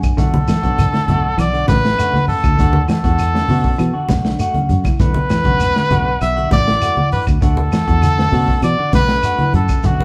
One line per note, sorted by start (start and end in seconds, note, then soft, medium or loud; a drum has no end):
0.00 0.32 D3 medium
0.00 0.32 F#3 medium
0.00 0.32 A3 medium
0.00 0.32 D4 medium
0.00 0.16 G#5 medium
0.00 kick medium
0.00 closed hi-hat soft
0.00 claves medium
0.00 shekere medium
0.17 0.57 B1 medium
0.17 0.39 D3 medium
0.17 0.36 A3 medium
0.17 0.36 D4 medium
0.17 0.36 F#4 medium
0.17 1.41 A4 medium
0.17 kick medium
0.17 snare soft
0.17 closed hi-hat medium
0.17 shekere medium
0.34 high conga loud
0.48 0.69 E3 medium
0.48 snare medium
0.48 closed hi-hat soft
0.48 claves medium
0.48 shekere medium
0.63 0.89 B1 medium
0.63 1.21 D3 medium
0.63 1.21 F#3 medium
0.63 1.21 A3 medium
0.63 1.21 D4 medium
0.63 0.82 D4 soft
0.63 0.81 F#4 medium
0.63 kick medium
0.63 closed hi-hat soft
0.63 shekere soft
0.78 closed hi-hat medium
0.78 high conga medium
0.78 low conga medium
0.78 claves medium
0.78 shekere medium
0.93 1.14 D3 medium
0.93 snare medium
0.93 closed hi-hat soft
1.08 1.34 B1 medium
1.08 1.27 A3 medium
1.08 1.27 D4 medium
1.08 1.27 F#4 medium
1.08 closed hi-hat medium
1.08 high conga medium
1.08 low conga medium
1.08 shekere soft
1.38 1.63 B1 medium
1.38 1.49 E3 medium
1.38 1.68 D5 loud
1.38 closed hi-hat medium
1.38 claves medium
1.38 shekere medium
1.53 1.64 D3 medium
1.53 1.72 D4 soft
1.53 1.72 F#4 medium
1.53 closed hi-hat soft
1.67 1.94 A1 medium
1.67 1.89 C#3 medium
1.67 2.25 B4 loud
1.67 kick medium
1.67 snare medium
1.67 closed hi-hat soft
1.67 high conga medium
1.67 shekere medium
1.84 2.42 D3 medium
1.84 2.42 F#3 medium
1.84 2.42 A3 medium
1.84 2.42 C#4 medium
1.84 snare medium
1.84 closed hi-hat soft
1.84 shekere soft
1.98 2.17 A3 medium
1.98 2.17 D4 medium
1.98 2.17 F#4 medium
1.98 closed hi-hat medium
1.98 claves medium
1.98 shekere medium
2.14 snare soft
2.14 high conga medium
2.28 2.85 A4 loud
2.28 open hi-hat medium
2.28 low conga medium
2.28 shekere soft
2.44 2.57 D2 medium
2.44 kick medium
2.44 closed hi-hat soft
2.44 high conga medium
2.44 claves medium
2.44 shekere medium
2.57 2.85 D2 medium
2.57 2.77 A3 medium
2.57 2.77 D4 medium
2.57 2.77 F#4 medium
2.57 muted clean electric guitar stroke medium
2.57 kick medium
2.57 snare soft
2.57 closed hi-hat medium
2.57 low conga medium
2.57 shekere medium
2.73 high conga loud
2.88 3.09 E3 medium
2.88 4.06 A4 medium
2.88 snare medium
2.88 closed hi-hat medium
2.88 claves medium
2.88 shekere medium
3.04 3.42 E2 medium
3.04 3.23 D4 soft
3.04 3.22 F#4 medium
3.04 kick medium
3.04 snare soft
3.04 closed hi-hat soft
3.04 shekere soft
3.19 closed hi-hat medium
3.19 claves medium
3.19 shekere medium
3.34 3.77 D3 medium
3.34 3.55 D3 medium
3.34 3.77 F#3 medium
3.34 3.78 A3 medium
3.34 3.78 C#4 medium
3.34 snare medium
3.49 3.75 B2 loud
3.49 3.67 A3 medium
3.49 3.68 D4 medium
3.49 3.68 F#4 medium
3.49 open hi-hat medium
3.49 high conga medium
3.49 low conga medium
3.49 shekere soft
3.64 kick medium
3.78 3.92 B2 medium
3.78 3.89 E3 medium
3.78 closed hi-hat medium
3.78 claves medium
3.78 shekere medium
3.94 4.05 D3 medium
3.94 4.13 D4 soft
3.94 4.12 F#4 medium
4.09 4.35 B1 medium
4.09 4.31 C#3 medium
4.09 kick medium
4.09 snare medium
4.09 closed hi-hat soft
4.09 high conga medium
4.09 shekere medium
4.25 4.39 D3 medium
4.25 4.39 F#3 medium
4.25 4.39 A3 medium
4.25 4.39 D4 medium
4.25 snare medium
4.25 shekere soft
4.39 4.58 A3 medium
4.39 4.58 F#4 medium
4.39 closed hi-hat medium
4.39 claves medium
4.39 shekere medium
4.54 4.69 D3 medium
4.54 4.69 F#3 medium
4.54 4.69 A3 medium
4.54 4.70 C#4 loud
4.54 closed hi-hat soft
4.54 high conga medium
4.69 4.83 F#2 medium
4.69 closed hi-hat soft
4.69 low conga medium
4.69 shekere soft
4.84 5.14 D3 medium
4.84 5.14 F#3 medium
4.84 5.15 A3 medium
4.84 5.15 E4 medium
4.84 kick medium
4.84 snare soft
4.84 closed hi-hat soft
4.84 high conga medium
4.84 claves medium
4.84 shekere medium
4.99 5.38 B1 medium
4.99 5.21 D3 medium
4.99 5.18 A3 medium
4.99 5.18 D4 medium
4.99 6.17 B4 loud
4.99 muted clean electric guitar stroke medium
4.99 kick medium
4.99 snare soft
4.99 closed hi-hat medium
4.99 low conga medium
4.99 shekere medium
5.14 high conga medium
5.29 5.52 E3 medium
5.29 snare medium
5.29 closed hi-hat soft
5.29 claves medium
5.29 shekere medium
5.44 5.71 B1 medium
5.44 6.04 D3 medium
5.44 6.04 F#3 soft
5.44 6.04 A3 medium
5.44 6.04 C#4 medium
5.44 5.64 D4 soft
5.44 5.63 F#4 medium
5.44 kick medium
5.44 closed hi-hat soft
5.44 high conga medium
5.44 shekere soft
5.60 snare soft
5.60 closed hi-hat medium
5.60 low conga medium
5.60 claves medium
5.60 shekere medium
5.75 5.98 D3 medium
5.75 snare medium
5.75 closed hi-hat soft
5.91 6.16 B1 medium
5.91 6.09 A3 medium
5.91 6.09 D4 medium
5.91 6.10 F#4 medium
5.91 closed hi-hat medium
5.91 high conga medium
5.91 low conga medium
5.91 shekere soft
6.21 6.47 B1 medium
6.21 6.49 E5 medium
6.21 muted clean electric guitar stroke medium
6.21 closed hi-hat medium
6.21 claves medium
6.21 shekere medium
6.36 6.48 D3 medium
6.36 6.55 D4 soft
6.36 6.54 F#4 medium
6.36 closed hi-hat soft
6.51 6.77 A1 medium
6.51 6.74 C#3 medium
6.51 7.08 D5 loud
6.51 kick medium
6.51 snare medium
6.51 closed hi-hat soft
6.51 high conga medium
6.51 shekere medium
6.67 7.25 D3 medium
6.67 7.25 F#3 medium
6.67 7.25 A3 medium
6.67 7.25 E4 medium
6.67 snare medium
6.67 closed hi-hat soft
6.67 shekere soft
6.81 6.99 A3 medium
6.81 7.00 F#4 medium
6.81 muted clean electric guitar stroke medium
6.81 closed hi-hat medium
6.81 claves medium
6.81 shekere medium
6.97 high conga medium
7.12 7.26 B4 medium
7.12 open hi-hat medium
7.12 low conga medium
7.12 shekere soft
7.27 7.40 D2 medium
7.27 kick medium
7.27 closed hi-hat soft
7.27 claves medium
7.27 shekere medium
7.41 7.68 D2 medium
7.41 7.63 D3 medium
7.41 7.60 A3 medium
7.41 7.60 D4 medium
7.41 7.60 F#4 medium
7.41 8.60 A4 loud
7.41 kick medium
7.41 closed hi-hat medium
7.41 low conga medium
7.41 shekere medium
7.57 high conga medium
7.72 7.94 E3 medium
7.72 snare medium
7.72 closed hi-hat soft
7.72 claves medium
7.72 shekere medium
7.87 8.26 E2 medium
7.87 8.06 D4 soft
7.87 8.05 F#4 medium
7.87 kick medium
7.87 closed hi-hat soft
7.87 shekere soft
8.02 closed hi-hat medium
8.02 high conga medium
8.02 claves medium
8.02 shekere medium
8.18 8.39 D3 medium
8.18 8.61 D3 medium
8.18 8.62 F#3 medium
8.18 8.62 A3 medium
8.18 8.62 C#4 medium
8.18 snare medium
8.32 8.58 B2 medium
8.32 8.51 A3 medium
8.32 8.51 D4 medium
8.32 8.52 F#4 medium
8.32 open hi-hat medium
8.32 high conga medium
8.32 low conga medium
8.32 shekere soft
8.48 kick medium
8.48 snare soft
8.62 8.76 B2 loud
8.62 8.74 E3 medium
8.62 8.92 D5 medium
8.62 closed hi-hat medium
8.62 claves medium
8.62 shekere medium
8.78 8.90 D3 medium
8.78 8.97 D4 soft
8.78 8.96 F#4 medium
8.93 9.19 B1 medium
8.93 9.15 C#3 medium
8.93 9.51 B4 loud
8.93 kick medium
8.93 snare medium
8.93 closed hi-hat soft
8.93 high conga medium
8.93 shekere medium
9.08 9.24 D3 medium
9.08 9.24 F#3 medium
9.08 9.24 A3 medium
9.08 9.24 C#4 medium
9.08 snare medium
9.08 shekere soft
9.23 9.42 A3 medium
9.23 9.42 D4 medium
9.23 9.43 F#4 medium
9.23 closed hi-hat medium
9.23 claves medium
9.23 shekere medium
9.39 9.54 D3 medium
9.39 9.54 F#3 medium
9.39 9.54 A3 medium
9.39 9.54 E4 medium
9.39 closed hi-hat soft
9.39 high conga medium
9.54 9.67 F#2 medium
9.54 9.88 A4 medium
9.54 closed hi-hat soft
9.54 low conga medium
9.54 shekere soft
9.69 9.99 D3 medium
9.69 9.99 F#3 medium
9.69 9.99 A3 medium
9.69 9.99 C#4 medium
9.69 kick medium
9.69 closed hi-hat soft
9.69 claves medium
9.69 shekere medium
9.83 10.04 B1 medium
9.83 10.04 D3 medium
9.83 10.02 A3 medium
9.83 10.03 D4 medium
9.83 10.03 F#4 medium
9.83 10.04 F#4 medium
9.83 kick medium
9.83 closed hi-hat medium
9.83 low conga medium
9.83 shekere medium
10.00 high conga medium